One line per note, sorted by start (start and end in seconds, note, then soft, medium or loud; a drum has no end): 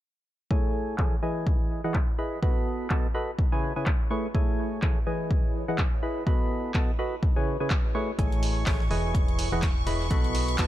0.51 0.96 A3 medium
0.51 2.43 E4 medium
0.51 0.96 E4 medium
0.51 0.96 G#4 medium
0.51 0.96 A4 medium
0.51 0.96 C#5 medium
0.51 0.96 G#5 medium
0.51 kick loud
0.84 1.71 C#5 medium
0.84 2.43 G#5 medium
0.98 1.15 E3 medium
0.98 1.15 E4 medium
0.98 1.15 G#4 medium
0.98 1.15 A4 medium
0.98 1.15 C#5 medium
0.98 1.15 G#5 medium
0.98 kick loud
0.98 clap loud
1.23 1.81 E3 medium
1.23 1.81 E4 medium
1.23 1.81 G#4 medium
1.23 1.81 B4 medium
1.23 1.81 D#5 medium
1.23 1.81 G#5 medium
1.47 kick loud
1.69 3.78 D#5 medium
1.76 4.64 B4 medium
1.84 1.98 E3 medium
1.84 1.98 E4 medium
1.84 1.98 G#4 medium
1.84 1.98 B4 medium
1.84 1.98 D#5 medium
1.84 1.98 F#5 loud
1.94 kick loud
1.94 clap loud
2.19 2.40 E4 medium
2.19 2.39 G#4 medium
2.19 2.40 B4 medium
2.19 2.39 D#5 medium
2.19 2.39 B5 medium
2.42 2.88 B3 medium
2.42 3.78 F#4 medium
2.42 2.88 F#4 medium
2.42 2.88 A4 medium
2.42 2.88 B4 medium
2.42 2.88 D#5 medium
2.42 2.88 B5 loud
2.42 kick loud
2.90 3.07 B3 medium
2.90 3.07 F#4 medium
2.90 3.07 A4 medium
2.90 3.07 B4 medium
2.90 3.07 D#5 medium
2.90 3.07 A5 medium
2.90 kick loud
2.90 clap loud
3.15 3.31 F#4 medium
3.15 3.31 A4 medium
3.15 3.31 B4 medium
3.15 3.31 D#5 medium
3.15 3.31 B5 medium
3.39 6.27 E4 medium
3.39 kick loud
3.52 3.73 C#3 medium
3.52 3.73 E4 medium
3.52 3.73 G#4 medium
3.52 3.73 B4 medium
3.52 3.73 C#5 medium
3.52 3.73 G#5 medium
3.76 3.90 C#3 medium
3.76 3.90 E4 medium
3.76 3.90 G#4 medium
3.76 3.90 B4 medium
3.76 3.90 C#5 medium
3.76 3.90 G#5 medium
3.83 5.55 C#5 medium
3.83 6.27 G#5 medium
3.83 clap loud
3.87 kick loud
4.11 4.27 A3 medium
4.11 4.27 E4 medium
4.11 4.27 G#4 medium
4.11 4.27 B4 medium
4.11 4.27 C#5 medium
4.11 4.27 C#6 medium
4.34 4.80 A3 medium
4.34 4.80 E4 medium
4.34 4.80 G#4 medium
4.34 4.80 A4 medium
4.34 4.80 C#5 medium
4.34 4.80 G#5 loud
4.34 kick loud
4.82 4.99 E3 medium
4.82 4.99 E4 medium
4.82 4.99 G#4 medium
4.82 4.99 A4 medium
4.82 4.99 C#5 medium
4.82 4.99 G#5 medium
4.82 kick loud
4.82 clap loud
5.07 5.65 E3 medium
5.07 5.65 E4 medium
5.07 5.65 G#4 medium
5.07 5.65 B4 medium
5.07 5.65 D#5 medium
5.07 5.65 G#5 medium
5.31 8.48 B4 medium
5.31 kick loud
5.62 7.62 D#5 medium
5.68 5.82 E3 medium
5.68 5.82 E4 medium
5.68 5.82 G#4 medium
5.68 5.82 B4 medium
5.68 5.82 D#5 medium
5.68 5.82 F#5 loud
5.78 kick loud
5.78 clap loud
6.03 6.24 E4 medium
6.03 6.24 G#4 medium
6.03 6.24 B4 medium
6.03 6.24 D#5 medium
6.03 6.24 B5 medium
6.27 6.72 B3 medium
6.27 6.72 F#4 medium
6.27 7.62 F#4 medium
6.27 6.72 A4 medium
6.27 6.72 B4 medium
6.27 6.72 D#5 medium
6.27 6.72 B5 loud
6.27 kick loud
6.74 6.91 B3 medium
6.74 6.91 F#4 medium
6.74 6.91 A4 medium
6.74 6.91 B4 medium
6.74 6.91 D#5 medium
6.74 6.91 A5 loud
6.74 kick loud
6.74 clap loud
6.99 7.15 F#4 medium
6.99 7.15 A4 medium
6.99 7.15 B4 medium
6.99 7.15 D#5 medium
6.99 7.15 B5 medium
7.23 10.11 E4 medium
7.23 kick loud
7.36 7.57 C#3 medium
7.36 7.57 E4 medium
7.36 7.57 G#4 medium
7.36 7.57 B4 medium
7.36 7.57 C#5 medium
7.36 7.57 G#5 medium
7.60 7.74 C#3 medium
7.60 7.74 E4 medium
7.60 7.74 G#4 medium
7.60 7.74 B4 medium
7.60 7.74 C#5 medium
7.60 10.11 G#5 medium
7.60 7.74 G#5 medium
7.67 9.39 C#5 medium
7.67 kick loud
7.67 clap loud
7.95 8.11 A3 medium
7.95 8.11 E4 medium
7.95 8.11 G#4 medium
7.95 8.11 B4 medium
7.95 8.11 C#5 medium
7.95 8.11 C#6 medium
8.19 8.65 A1 medium
8.19 8.64 A3 medium
8.19 8.64 E4 medium
8.19 8.64 G#4 medium
8.19 8.64 A4 medium
8.19 8.64 C#5 medium
8.19 8.64 G#5 loud
8.19 10.67 C#6 medium
8.19 kick loud
8.19 closed hi-hat medium
8.32 closed hi-hat soft
8.43 closed hi-hat medium
8.43 open hi-hat medium
8.66 8.89 A1 medium
8.66 8.83 E3 medium
8.66 8.83 E4 medium
8.66 8.83 G#4 medium
8.66 8.83 A4 medium
8.66 8.83 C#5 medium
8.66 8.83 G#5 medium
8.66 kick loud
8.66 snare loud
8.66 clap loud
8.66 open hi-hat medium
8.80 snare soft
8.91 9.50 E1 medium
8.91 9.49 E3 medium
8.91 9.49 E4 medium
8.91 9.49 G#4 medium
8.91 9.49 B4 medium
8.91 9.49 D#5 medium
8.91 9.49 G#5 medium
8.91 open hi-hat medium
9.15 kick loud
9.15 closed hi-hat medium
9.28 closed hi-hat soft
9.33 10.67 B4 medium
9.33 10.67 D#5 medium
9.39 closed hi-hat medium
9.39 open hi-hat medium
9.52 9.85 E1 medium
9.52 9.66 E3 medium
9.52 9.66 E4 medium
9.52 9.66 G#4 medium
9.52 9.66 B4 medium
9.52 9.66 D#5 medium
9.52 9.66 F#5 loud
9.62 kick loud
9.62 snare loud
9.62 clap loud
9.62 closed hi-hat medium
9.87 10.09 E1 medium
9.87 10.08 E4 medium
9.87 10.08 G#4 medium
9.87 10.08 B4 medium
9.87 10.08 D#5 medium
9.87 10.08 B5 medium
9.87 closed hi-hat medium
9.87 open hi-hat medium
10.00 snare soft
10.11 10.57 B1 medium
10.11 10.56 B3 medium
10.11 10.67 F#4 medium
10.11 10.56 F#4 medium
10.11 10.56 A4 medium
10.11 10.56 B4 medium
10.11 10.56 D#5 medium
10.11 10.56 B5 loud
10.11 kick loud
10.11 closed hi-hat medium
10.24 closed hi-hat soft
10.35 closed hi-hat medium
10.35 open hi-hat medium
10.48 closed hi-hat soft
10.58 10.67 B1 medium
10.58 10.67 B3 medium
10.58 10.67 F#4 medium
10.58 10.67 A4 medium
10.58 10.67 B4 medium
10.58 10.67 D#5 medium
10.58 10.67 A5 medium
10.58 kick loud
10.58 snare loud
10.58 clap loud
10.58 closed hi-hat medium